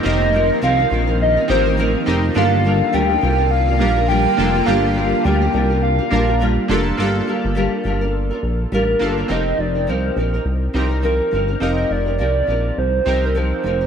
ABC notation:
X:1
M:4/4
L:1/16
Q:"Swing 16ths" 1/4=104
K:Fmix
V:1 name="Soft synth lead"
e4 f4 e2 c4 z2 | f4 g4 f4 g4 | f4 g4 f6 z2 | z12 B4 |
e2 d2 c2 B4 z2 B4 | e2 d2 d4 c3 B c4 |]
V:2 name="Synth keys"
[CEGB]6 z4 [CEGB]3 z [CEGB]2 | [B,DFA]6 z4 [B,DFB]3 z [B,DFA]2 | [B,DFG]6 z4 [B,DFB]3 z [B,DFA]2 | [B,DFA]6 z8 [B,DFA]2 |
[CEGB]6 z4 [CEGB]4 z2 | [CEGB]6 z4 [CEGB]4 z2 |]
V:3 name="Nylon-string guitar"
[F,CEB]2 [F,CEB]2 [F,CEB] [CEB] [F,CEB] [CEB]2 [CEB] [F,CEB] [CEB] [F,CEB]2 [F,CEB]2 | [G,DFB]2 [G,DFB]2 [G,DFB] [DFB] [G,DFB] [DFB]2 [DFB] [G,DFB] [DFB] [G,DFB]2 [G,DFB] [DFB] | [G,DFB]2 [G,DFB]2 [G,DFB] [DFB] [G,DFB] [DFB]2 [DFB] [G,DFB] [DFB] [G,DFB]2 [G,DFB]2 | [G,DFB]2 [G,DFB]2 [G,DFB]2 [G,DFB] [DFB]2 [DFB]3 [G,DFB]2 [G,DFB] [DFB] |
[F,CEB]3 [CEB] [F,CEB]2 [F,CEB] [CEB]3 [F,CEB] [CEB] [F,CEB]2 [F,CEB] [CEB] | [F,CEB]3 [CEB] [F,CEB]2 [F,CEB]4 [F,CEB] [CEB] [F,CEB]2 [F,CEB] [EB] |]
V:4 name="Ambient pad"
[E,B,EF]16 | [D,G,B,F]16- | [D,G,B,F]16 | z16 |
z16 | z16 |]
V:5 name="Analog synth bass" clef=bass
F,,,4 C,,2 B,,,4 A,,,4 F,,,2 | G,,,4 D,,2 C,,4 B,,,4 F,,,2 | G,,,4 D,,2 C,,4 B,,,4 F,,,2 | G,,,2 z G,,,2 z G,,,4 B,,,2 A,,,2 G,,,2 |
F,,,2 F,,,2 C,,2 B,,,2 C,,2 C,,4 G,,,2 | F,,,2 F,,,2 C,,2 B,,,2 C,,2 C,,4 F,,,2 |]